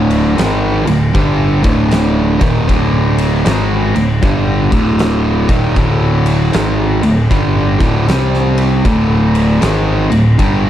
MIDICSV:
0, 0, Header, 1, 4, 480
1, 0, Start_track
1, 0, Tempo, 770218
1, 1674, Time_signature, 4, 2, 24, 8
1, 6667, End_track
2, 0, Start_track
2, 0, Title_t, "Distorted electric guitar"
2, 0, Program_c, 0, 30
2, 0, Note_on_c, 0, 38, 88
2, 0, Note_on_c, 0, 45, 99
2, 0, Note_on_c, 0, 50, 110
2, 226, Note_off_c, 0, 38, 0
2, 228, Note_off_c, 0, 45, 0
2, 229, Note_on_c, 0, 44, 91
2, 230, Note_off_c, 0, 50, 0
2, 232, Note_on_c, 0, 51, 102
2, 237, Note_on_c, 0, 56, 98
2, 532, Note_off_c, 0, 44, 0
2, 533, Note_off_c, 0, 51, 0
2, 536, Note_off_c, 0, 56, 0
2, 541, Note_on_c, 0, 38, 60
2, 543, Note_on_c, 0, 45, 70
2, 679, Note_off_c, 0, 38, 0
2, 680, Note_off_c, 0, 45, 0
2, 709, Note_on_c, 0, 43, 93
2, 715, Note_on_c, 0, 50, 94
2, 720, Note_on_c, 0, 55, 103
2, 1011, Note_off_c, 0, 43, 0
2, 1014, Note_off_c, 0, 50, 0
2, 1017, Note_off_c, 0, 55, 0
2, 1019, Note_on_c, 0, 38, 94
2, 1022, Note_on_c, 0, 45, 97
2, 1027, Note_on_c, 0, 50, 100
2, 1492, Note_off_c, 0, 38, 0
2, 1493, Note_off_c, 0, 45, 0
2, 1494, Note_on_c, 0, 39, 93
2, 1496, Note_off_c, 0, 50, 0
2, 1501, Note_on_c, 0, 46, 88
2, 1505, Note_on_c, 0, 51, 97
2, 1664, Note_off_c, 0, 39, 0
2, 1668, Note_off_c, 0, 46, 0
2, 1669, Note_on_c, 0, 38, 98
2, 1670, Note_off_c, 0, 51, 0
2, 1674, Note_on_c, 0, 45, 91
2, 1679, Note_on_c, 0, 50, 114
2, 2146, Note_off_c, 0, 38, 0
2, 2149, Note_off_c, 0, 45, 0
2, 2151, Note_off_c, 0, 50, 0
2, 2151, Note_on_c, 0, 44, 90
2, 2156, Note_on_c, 0, 51, 106
2, 2161, Note_on_c, 0, 56, 111
2, 2452, Note_off_c, 0, 44, 0
2, 2455, Note_off_c, 0, 51, 0
2, 2457, Note_off_c, 0, 56, 0
2, 2460, Note_on_c, 0, 38, 70
2, 2463, Note_on_c, 0, 45, 81
2, 2597, Note_off_c, 0, 38, 0
2, 2599, Note_off_c, 0, 45, 0
2, 2630, Note_on_c, 0, 43, 98
2, 2637, Note_on_c, 0, 50, 105
2, 2640, Note_on_c, 0, 55, 102
2, 2931, Note_off_c, 0, 43, 0
2, 2935, Note_off_c, 0, 50, 0
2, 2936, Note_off_c, 0, 55, 0
2, 2942, Note_on_c, 0, 38, 95
2, 2948, Note_on_c, 0, 45, 102
2, 2953, Note_on_c, 0, 50, 97
2, 3412, Note_off_c, 0, 38, 0
2, 3415, Note_off_c, 0, 45, 0
2, 3418, Note_off_c, 0, 50, 0
2, 3424, Note_on_c, 0, 39, 86
2, 3428, Note_on_c, 0, 46, 105
2, 3434, Note_on_c, 0, 51, 99
2, 3588, Note_off_c, 0, 39, 0
2, 3591, Note_off_c, 0, 46, 0
2, 3593, Note_off_c, 0, 51, 0
2, 3594, Note_on_c, 0, 38, 105
2, 3600, Note_on_c, 0, 45, 102
2, 3603, Note_on_c, 0, 50, 98
2, 4063, Note_off_c, 0, 38, 0
2, 4066, Note_on_c, 0, 44, 100
2, 4067, Note_off_c, 0, 45, 0
2, 4070, Note_on_c, 0, 51, 102
2, 4072, Note_off_c, 0, 50, 0
2, 4074, Note_on_c, 0, 56, 109
2, 4368, Note_off_c, 0, 44, 0
2, 4371, Note_off_c, 0, 51, 0
2, 4373, Note_off_c, 0, 56, 0
2, 4379, Note_on_c, 0, 38, 68
2, 4384, Note_on_c, 0, 45, 83
2, 4517, Note_off_c, 0, 38, 0
2, 4519, Note_off_c, 0, 45, 0
2, 4549, Note_on_c, 0, 43, 95
2, 4554, Note_on_c, 0, 50, 106
2, 4558, Note_on_c, 0, 55, 103
2, 4850, Note_off_c, 0, 43, 0
2, 4852, Note_off_c, 0, 50, 0
2, 4855, Note_off_c, 0, 55, 0
2, 4858, Note_on_c, 0, 38, 93
2, 4862, Note_on_c, 0, 45, 89
2, 4867, Note_on_c, 0, 50, 109
2, 5025, Note_off_c, 0, 38, 0
2, 5027, Note_off_c, 0, 45, 0
2, 5030, Note_off_c, 0, 50, 0
2, 5032, Note_on_c, 0, 48, 101
2, 5038, Note_on_c, 0, 55, 110
2, 5044, Note_on_c, 0, 60, 104
2, 5506, Note_off_c, 0, 48, 0
2, 5509, Note_off_c, 0, 55, 0
2, 5513, Note_off_c, 0, 60, 0
2, 5513, Note_on_c, 0, 38, 92
2, 5518, Note_on_c, 0, 45, 105
2, 5522, Note_on_c, 0, 50, 109
2, 5986, Note_off_c, 0, 38, 0
2, 5989, Note_on_c, 0, 44, 106
2, 5990, Note_off_c, 0, 45, 0
2, 5992, Note_off_c, 0, 50, 0
2, 5996, Note_on_c, 0, 51, 103
2, 5999, Note_on_c, 0, 56, 103
2, 6291, Note_off_c, 0, 44, 0
2, 6294, Note_off_c, 0, 51, 0
2, 6296, Note_off_c, 0, 56, 0
2, 6299, Note_on_c, 0, 38, 71
2, 6302, Note_on_c, 0, 45, 79
2, 6437, Note_off_c, 0, 38, 0
2, 6438, Note_off_c, 0, 45, 0
2, 6467, Note_on_c, 0, 43, 103
2, 6472, Note_on_c, 0, 50, 91
2, 6474, Note_on_c, 0, 55, 108
2, 6667, Note_off_c, 0, 43, 0
2, 6667, Note_off_c, 0, 50, 0
2, 6667, Note_off_c, 0, 55, 0
2, 6667, End_track
3, 0, Start_track
3, 0, Title_t, "Picked electric bass"
3, 0, Program_c, 1, 34
3, 0, Note_on_c, 1, 26, 93
3, 212, Note_off_c, 1, 26, 0
3, 237, Note_on_c, 1, 32, 98
3, 523, Note_off_c, 1, 32, 0
3, 547, Note_on_c, 1, 26, 86
3, 704, Note_off_c, 1, 26, 0
3, 717, Note_on_c, 1, 31, 93
3, 1003, Note_off_c, 1, 31, 0
3, 1024, Note_on_c, 1, 26, 101
3, 1478, Note_off_c, 1, 26, 0
3, 1504, Note_on_c, 1, 27, 93
3, 1662, Note_off_c, 1, 27, 0
3, 1677, Note_on_c, 1, 26, 91
3, 2130, Note_off_c, 1, 26, 0
3, 2156, Note_on_c, 1, 32, 95
3, 2442, Note_off_c, 1, 32, 0
3, 2464, Note_on_c, 1, 26, 87
3, 2622, Note_off_c, 1, 26, 0
3, 2634, Note_on_c, 1, 31, 101
3, 2921, Note_off_c, 1, 31, 0
3, 2942, Note_on_c, 1, 26, 99
3, 3397, Note_off_c, 1, 26, 0
3, 3421, Note_on_c, 1, 27, 94
3, 3580, Note_off_c, 1, 27, 0
3, 3592, Note_on_c, 1, 26, 95
3, 4047, Note_off_c, 1, 26, 0
3, 4075, Note_on_c, 1, 32, 96
3, 4361, Note_off_c, 1, 32, 0
3, 4385, Note_on_c, 1, 26, 83
3, 4542, Note_off_c, 1, 26, 0
3, 4553, Note_on_c, 1, 31, 91
3, 4840, Note_off_c, 1, 31, 0
3, 4865, Note_on_c, 1, 26, 101
3, 5021, Note_off_c, 1, 26, 0
3, 5034, Note_on_c, 1, 36, 89
3, 5488, Note_off_c, 1, 36, 0
3, 5516, Note_on_c, 1, 26, 96
3, 5969, Note_off_c, 1, 26, 0
3, 5995, Note_on_c, 1, 32, 100
3, 6281, Note_off_c, 1, 32, 0
3, 6304, Note_on_c, 1, 26, 85
3, 6462, Note_off_c, 1, 26, 0
3, 6477, Note_on_c, 1, 31, 90
3, 6667, Note_off_c, 1, 31, 0
3, 6667, End_track
4, 0, Start_track
4, 0, Title_t, "Drums"
4, 65, Note_on_c, 9, 51, 74
4, 128, Note_off_c, 9, 51, 0
4, 238, Note_on_c, 9, 51, 102
4, 246, Note_on_c, 9, 38, 125
4, 300, Note_off_c, 9, 51, 0
4, 308, Note_off_c, 9, 38, 0
4, 544, Note_on_c, 9, 51, 76
4, 606, Note_off_c, 9, 51, 0
4, 714, Note_on_c, 9, 51, 105
4, 715, Note_on_c, 9, 36, 110
4, 776, Note_off_c, 9, 51, 0
4, 778, Note_off_c, 9, 36, 0
4, 1021, Note_on_c, 9, 51, 71
4, 1024, Note_on_c, 9, 36, 106
4, 1083, Note_off_c, 9, 51, 0
4, 1087, Note_off_c, 9, 36, 0
4, 1192, Note_on_c, 9, 51, 107
4, 1200, Note_on_c, 9, 38, 118
4, 1254, Note_off_c, 9, 51, 0
4, 1262, Note_off_c, 9, 38, 0
4, 1501, Note_on_c, 9, 51, 79
4, 1504, Note_on_c, 9, 36, 107
4, 1563, Note_off_c, 9, 51, 0
4, 1566, Note_off_c, 9, 36, 0
4, 1676, Note_on_c, 9, 36, 97
4, 1677, Note_on_c, 9, 51, 104
4, 1739, Note_off_c, 9, 36, 0
4, 1739, Note_off_c, 9, 51, 0
4, 1984, Note_on_c, 9, 51, 81
4, 2046, Note_off_c, 9, 51, 0
4, 2155, Note_on_c, 9, 51, 116
4, 2163, Note_on_c, 9, 38, 124
4, 2217, Note_off_c, 9, 51, 0
4, 2225, Note_off_c, 9, 38, 0
4, 2465, Note_on_c, 9, 51, 75
4, 2527, Note_off_c, 9, 51, 0
4, 2633, Note_on_c, 9, 51, 99
4, 2634, Note_on_c, 9, 36, 109
4, 2695, Note_off_c, 9, 51, 0
4, 2697, Note_off_c, 9, 36, 0
4, 2943, Note_on_c, 9, 36, 106
4, 2944, Note_on_c, 9, 51, 70
4, 3005, Note_off_c, 9, 36, 0
4, 3006, Note_off_c, 9, 51, 0
4, 3111, Note_on_c, 9, 51, 104
4, 3119, Note_on_c, 9, 38, 114
4, 3173, Note_off_c, 9, 51, 0
4, 3181, Note_off_c, 9, 38, 0
4, 3421, Note_on_c, 9, 51, 70
4, 3422, Note_on_c, 9, 36, 107
4, 3484, Note_off_c, 9, 36, 0
4, 3484, Note_off_c, 9, 51, 0
4, 3590, Note_on_c, 9, 51, 92
4, 3592, Note_on_c, 9, 36, 94
4, 3652, Note_off_c, 9, 51, 0
4, 3655, Note_off_c, 9, 36, 0
4, 3900, Note_on_c, 9, 51, 76
4, 3962, Note_off_c, 9, 51, 0
4, 4071, Note_on_c, 9, 51, 99
4, 4079, Note_on_c, 9, 38, 124
4, 4133, Note_off_c, 9, 51, 0
4, 4141, Note_off_c, 9, 38, 0
4, 4382, Note_on_c, 9, 51, 71
4, 4444, Note_off_c, 9, 51, 0
4, 4554, Note_on_c, 9, 36, 107
4, 4557, Note_on_c, 9, 51, 96
4, 4617, Note_off_c, 9, 36, 0
4, 4619, Note_off_c, 9, 51, 0
4, 4864, Note_on_c, 9, 36, 105
4, 4864, Note_on_c, 9, 51, 68
4, 4926, Note_off_c, 9, 36, 0
4, 4927, Note_off_c, 9, 51, 0
4, 5038, Note_on_c, 9, 51, 101
4, 5046, Note_on_c, 9, 38, 118
4, 5100, Note_off_c, 9, 51, 0
4, 5108, Note_off_c, 9, 38, 0
4, 5198, Note_on_c, 9, 38, 33
4, 5261, Note_off_c, 9, 38, 0
4, 5345, Note_on_c, 9, 51, 75
4, 5407, Note_off_c, 9, 51, 0
4, 5515, Note_on_c, 9, 51, 98
4, 5516, Note_on_c, 9, 36, 100
4, 5577, Note_off_c, 9, 51, 0
4, 5578, Note_off_c, 9, 36, 0
4, 5826, Note_on_c, 9, 51, 77
4, 5888, Note_off_c, 9, 51, 0
4, 5994, Note_on_c, 9, 51, 113
4, 6002, Note_on_c, 9, 38, 118
4, 6056, Note_off_c, 9, 51, 0
4, 6064, Note_off_c, 9, 38, 0
4, 6305, Note_on_c, 9, 51, 78
4, 6367, Note_off_c, 9, 51, 0
4, 6476, Note_on_c, 9, 36, 104
4, 6476, Note_on_c, 9, 51, 103
4, 6538, Note_off_c, 9, 36, 0
4, 6538, Note_off_c, 9, 51, 0
4, 6667, End_track
0, 0, End_of_file